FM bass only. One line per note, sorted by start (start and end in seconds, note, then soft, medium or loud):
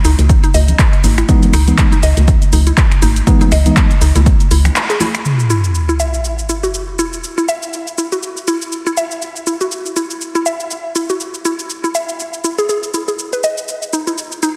0.05 0.15 C#2 medium
0.19 0.36 C#2 medium
0.54 0.73 C#2 medium
1.04 1.23 G#1 medium
1.53 1.72 C#2 loud
2.03 2.13 C#2 medium
2.17 2.34 C#2 medium
2.53 2.71 C#2 medium
3.02 3.21 G#1 medium
3.52 3.71 C#2 medium
4.01 4.12 C#2 medium
4.15 4.32 C#2 medium
4.51 4.70 C#2 medium